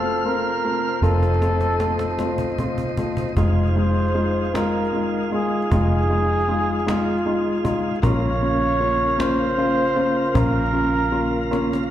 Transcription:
Already playing: F1 C3 A3 C4 F4 A4 F5
0.25 A3 C4 F4 A#4
0.64 A3 C4 F4
1.02 F1 A3 C4 D#4 F4 A4, cajon slap
1.23 cajon slap
1.41 A3 C4 F4, cajon slap
1.61 cajon slap
1.80 A3 C4 F4, cajon slap
1.99 cajon slap
2.19 A3 C4 F4, cajon slap
2.38 cajon bass
2.58 A3 C4 F4, cajon bass
2.78 cajon bass
2.97 A3 C4 F4, cajon bass
3.17 cajon bass
3.36 F1 D#3 G#3 D#4 F4 C5, cajon bass
3.76 G#3 D#4 F4, cajon slap
4.14 G#3 D#4 F4, cajon slap
4.54 G#3 D#4 F4 A#4, cajon slap
4.93 G#3 D#4 F4, cajon slap
5.31 G#3 D#4 F4 G#4, cajon slap
5.71 F1 G#3 D#4 F4 G#4, cajon bass
6.10 G#3 D#4 F4, cajon slap
6.48 G#3 D#4 F4, cajon slap
6.86 G#3 D#4 F4, cajon slap
7.25 G#3 D#4 F4, cajon slap
7.64 G#3 D#4 F4, cajon bass
8.02 A#1 C#3 A#3 C#4 F4 C#5, cajon bass
8.41 A#3 C#4 F4, cajon slap
8.80 A#3 C#4 F4, cajon slap
9.18 A#3 C#4 F4 C5, cajon slap
9.58 A#3 C#4 F4, cajon slap
9.96 A#3 C#4 F4, cajon slap
10.34 A#1 A#3 C#4 F4 A#4, cajon bass
10.73 A#3 C#4 F4, cajon slap
11.12 A#3 C#4 F4, cajon slap
11.51 A#3 C#4 F4, cajon slap
11.73 cajon slap

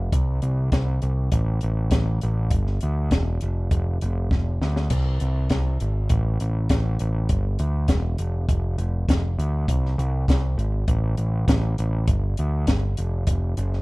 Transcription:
0.12 C2, kick, closed hi-hat
0.42 C2, closed hi-hat
0.72 C2, kick, snare, closed hi-hat
1.02 C2, closed hi-hat
1.32 A1, kick, closed hi-hat
1.61 A1, closed hi-hat
1.91 A1, kick, snare, closed hi-hat
2.21 A1, closed hi-hat
2.51 G1, kick, closed hi-hat
2.67 snare
2.81 D2, closed hi-hat
3.11 E1, kick, snare, closed hi-hat
3.41 F1, closed hi-hat
3.71 F1, kick, closed hi-hat
4.01 F1, closed hi-hat
4.31 F1, kick, snare
4.61 D2, snare
4.76 snare
4.90 C2, kick, closed hi-hat, crash
5.20 C2, closed hi-hat
5.50 C2, kick, snare, closed hi-hat
5.80 G#1, closed hi-hat
6.09 A1, kick, closed hi-hat
6.40 A1, closed hi-hat
6.69 A1, kick, snare, closed hi-hat
6.99 A1, closed hi-hat
7.29 G1, kick, closed hi-hat
7.59 D2, closed hi-hat
7.88 E1, kick, snare, closed hi-hat
8.18 F1, closed hi-hat
8.49 F1, kick, closed hi-hat
8.78 F1, closed hi-hat
9.09 F1, kick, snare, closed hi-hat
9.39 D2, closed hi-hat
9.68 C2, kick, closed hi-hat
9.86 snare
9.98 C2, closed hi-hat
10.28 C2, kick, snare, closed hi-hat
10.57 G#1, closed hi-hat
10.88 A1, kick, closed hi-hat
11.17 A1, closed hi-hat
11.47 A1, kick, snare, closed hi-hat
11.78 A1, closed hi-hat
12.08 G1, kick, closed hi-hat
12.37 D2, closed hi-hat
12.67 G1, kick, snare, closed hi-hat
12.97 F1, closed hi-hat
13.27 F1, kick, closed hi-hat
13.57 F#1, closed hi-hat
13.73 snare

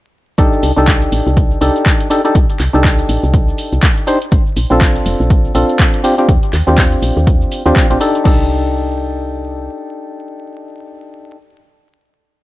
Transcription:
0.38 C2 D4 D#4 G4 A4, kick, closed hi-hat, shaker
0.53 shaker
0.63 C2, open hi-hat, shaker
0.77 C2 D4 D#4 G4 A4, shaker
0.88 kick, clap, closed hi-hat, shaker
1.02 closed hi-hat, shaker
1.12 A1, open hi-hat, shaker
1.27 C2, shaker
1.37 kick, closed hi-hat, shaker
1.51 shaker
1.61 C2 D4 D#4 G4 A4, open hi-hat, shaker
1.76 closed hi-hat, shaker
1.86 kick, clap, closed hi-hat, shaker
2.00 closed hi-hat, shaker
2.10 D4 D#4 G4 A4, open hi-hat, shaker
2.25 D4 D#4 G4 A4, closed hi-hat, shaker
2.35 C2, kick, closed hi-hat, shaker
2.50 closed hi-hat, shaker
2.60 C2, clap, open hi-hat, shaker
2.73 C2 D4 D#4 G4 A4, shaker
2.84 kick, clap, closed hi-hat, shaker
2.99 closed hi-hat, shaker
3.09 A1, open hi-hat, shaker
3.23 C2, shaker
3.34 kick, closed hi-hat, shaker
3.48 shaker
3.58 open hi-hat, shaker
3.73 C2, closed hi-hat, shaker
3.83 kick, clap, closed hi-hat, shaker
3.97 closed hi-hat, shaker
4.07 D4 D#4 G4 C5, open hi-hat, shaker
4.22 closed hi-hat, shaker
4.32 A#1, kick, closed hi-hat, shaker
4.46 shaker
4.57 A#1, open hi-hat, shaker
4.70 A#1 C4 D4 F4 A4, shaker
4.81 kick, clap, closed hi-hat, shaker
4.96 closed hi-hat, shaker
5.06 F1, open hi-hat, shaker
5.20 A#1, shaker
5.30 kick, closed hi-hat, shaker
5.45 shaker
5.54 A#1 C4 D4 F4 A4, open hi-hat, shaker
5.69 closed hi-hat, shaker
5.79 kick, clap, closed hi-hat, shaker
5.94 closed hi-hat, shaker
6.04 C4 D4 F4 G4, open hi-hat, shaker
6.18 C4 D4 F4 G4, closed hi-hat, shaker
6.29 D#2, kick, closed hi-hat, shaker
6.43 closed hi-hat, shaker
6.53 D#2, clap, open hi-hat, shaker
6.67 D#2 C4 D4 F4 G4, shaker
6.78 kick, clap, closed hi-hat, shaker
6.92 closed hi-hat, shaker
7.02 A#1, open hi-hat, shaker
7.17 D#2, shaker
7.27 kick, closed hi-hat, shaker
7.41 shaker
7.52 open hi-hat, shaker
7.66 D#2 C4 D4 F4 G4, closed hi-hat, shaker
7.76 kick, clap, closed hi-hat, shaker
7.90 A#1 C4 D4 F4 G4, closed hi-hat, shaker
8.00 D4 D#4 G4 A4, open hi-hat, shaker
8.15 closed hi-hat, shaker
8.24 C2 D4 D#4 G4 A4, kick, crash

